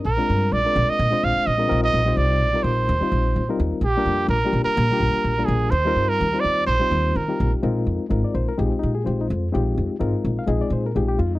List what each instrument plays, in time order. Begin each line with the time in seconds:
0.05 upright bass A#1, trumpet A#4
0.17 reed electric piano G#3 C4 D4 F4 A#4
0.29 upright bass G2
0.52 upright bass A#1, trumpet D5
0.64 reed electric piano G#3 C4 D4 F4 A#4
0.76 upright bass A#1
0.89 trumpet D#5, muted upright bass stroke
0.99 upright bass A#2
1.10 reed electric piano G#3 C4 D4 F4 C5, muted upright bass stroke
1.23 upright bass A#1, trumpet F5
1.37 muted upright bass stroke
1.47 upright bass A#1, trumpet D#5
1.57 reed electric piano G#3 C4 D4 F4 A#4
1.68 upright bass A#1, reed electric piano G3 C4 D#4 F4 A#4
1.84 trumpet D#5
1.94 upright bass A#1
2.05 reed electric piano G3 C4 D#4 F4 C5
2.17 upright bass C2, trumpet D5
2.41 upright bass A#1
2.53 reed electric piano G3 C4 D#4 F4 A#4
2.63 upright bass A#1, trumpet C5
2.89 upright bass D#2
3.01 reed electric piano G3 C4 D#4 F4 C5, muted upright bass stroke
3.12 upright bass A#1
3.36 upright bass A#2
3.49 reed electric piano G3 C4 D#4 F4 A#4
3.60 upright bass D#2
3.71 muted upright bass stroke
3.81 upright bass A#1, trumpet G4
3.97 reed electric piano G3 A#3 D4 F4 A#4
4.06 upright bass F2
4.28 upright bass A#1, trumpet A#4
4.44 reed electric piano G3 A#3 D4 F4 G4
4.53 upright bass A#1
4.64 trumpet A#4, muted upright bass stroke
4.77 upright bass A#2
4.90 reed electric piano G3 A#3 D4 F4 G4, muted upright bass stroke
5.00 upright bass A#1
5.14 muted upright bass stroke
5.24 upright bass A#1
5.38 reed electric piano G3 A#3 D4 F4 A#4
5.45 upright bass A#1, trumpet G#4
5.70 upright bass D#2, trumpet C5
5.85 reed electric piano G3 C4 D#4 F4 A#4
5.96 upright bass G2
6.09 trumpet A#4
6.21 upright bass D#2
6.33 reed electric piano G3 C4 D#4 F4 C5
6.40 trumpet D5
6.44 upright bass D#2
6.67 upright bass A#1, trumpet C5
6.80 reed electric piano G3 C4 D#4 F4 C5, muted upright bass stroke
6.91 upright bass D#2
7.15 upright bass D#3, trumpet A#4
7.28 reed electric piano G3 C4 D#4 F4 G4
7.40 upright bass A#1
7.53 muted upright bass stroke
7.62 upright bass A#1, reed electric piano G#3 C4 D#4 F4 A#4
7.87 upright bass F2
8.09 upright bass G#1, reed electric piano G#3 C4 D#4 F4 A#4
8.24 reed electric piano D5
8.34 upright bass A#1, reed electric piano C5
8.49 reed electric piano A#4
8.57 upright bass A#1, reed electric piano G#3 C4 D#4 F4 G4 G#4
8.70 reed electric piano C4
8.79 reed electric piano D#4
8.83 upright bass A#2
8.94 reed electric piano G#4
9.04 upright bass A#1, reed electric piano G#3 C4 D#4 F4 G4 C5
9.21 reed electric piano D#4
9.30 upright bass F2
9.52 upright bass A#1, reed electric piano G#3 C4 D#4 F4 G4
9.78 upright bass F2
9.99 upright bass G#1, reed electric piano G#3 C4 D#4 F4 A#4
10.25 upright bass A#1
10.39 reed electric piano F5
10.47 upright bass A#1, reed electric piano G#3 C4 D#4 F4 G#4 D#5
10.61 reed electric piano D5
10.70 upright bass A#2, reed electric piano C5
10.86 reed electric piano A#4
10.95 upright bass A#1, reed electric piano G#3 C4 D#4 F4 G4 G#4
11.08 reed electric piano G4
11.19 upright bass F2, reed electric piano F4
11.35 reed electric piano D#4